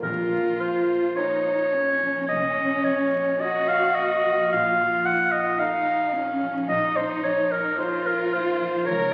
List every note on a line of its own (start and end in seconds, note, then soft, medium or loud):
0.00 0.97 A#1 medium
0.00 1.69 A#2 medium
0.00 2.27 A#2 medium
0.00 0.31 F3 medium
0.00 0.89 F4 medium
0.00 1.13 F4 medium
0.00 0.62 A#4 medium
0.00 2.96 F5 medium
0.32 2.00 F3 soft
0.60 1.72 A#3 soft
0.60 1.18 C5 medium
0.90 1.44 F4 soft
1.16 2.03 C#4 medium
1.16 1.73 D#4 medium
1.16 2.03 F4 medium
1.16 3.39 A#4 medium
1.16 2.03 A#4 medium
1.16 2.28 C#5 medium
1.45 3.11 F4 soft
1.74 2.56 A#3 soft
1.74 3.41 C#4 medium
2.01 2.83 F3 soft
2.28 3.20 F1 medium
2.28 4.51 A#2 medium
2.28 2.85 D#5 medium
2.57 3.96 A#3 soft
2.84 4.24 F3 soft
2.84 3.41 C#5 medium
3.12 3.67 F4 soft
3.40 4.27 C#4 medium
3.40 4.27 F4 medium
3.40 4.51 F#4 medium
3.40 4.57 A#4 medium
3.40 4.27 A#4 medium
3.40 3.70 D#5 medium
3.68 5.32 F4 soft
3.68 3.97 F5 medium
3.95 4.57 A#3 soft
3.95 4.51 D#5 medium
4.25 4.78 F3 medium
4.52 5.40 A#1 medium
4.52 6.68 A#2 medium
4.52 5.61 F4 medium
4.52 5.07 F5 medium
4.79 6.41 F3 soft
5.05 6.13 D#4 soft
5.05 5.33 F#5 medium
5.32 5.86 F4 soft
5.32 5.61 D#5 medium
5.59 6.44 D#4 medium
5.59 6.14 D#4 medium
5.59 6.44 F4 medium
5.59 7.78 A4 medium
5.59 6.44 A4 medium
5.59 6.42 F5 loud
5.87 7.51 F4 medium
6.15 6.69 C#4 medium
6.15 6.95 D#4 medium
6.42 7.23 F3 soft
6.68 7.59 A#1 medium
6.68 8.91 A#2 medium
6.68 7.79 D#4 medium
6.68 6.98 D#5 medium
6.96 8.32 D#4 soft
6.96 7.23 C5 medium
7.23 8.59 F3 medium
7.23 7.53 C#5 medium
7.51 8.05 F4 medium
7.51 7.78 A#4 medium
7.78 8.62 D#4 medium
7.78 8.87 F4 medium
7.78 8.62 F4 medium
7.78 8.91 A4 medium
7.78 8.62 A4 medium
7.78 8.07 C5 medium
8.06 9.14 F4 medium
8.06 8.35 A#4 medium
8.33 8.91 D#4 medium
8.33 8.88 C5 loud
8.61 9.14 F3 medium
8.87 9.14 C#2 medium
8.87 9.14 C#3 medium
8.87 9.14 A#4 medium
8.87 9.14 C#5 medium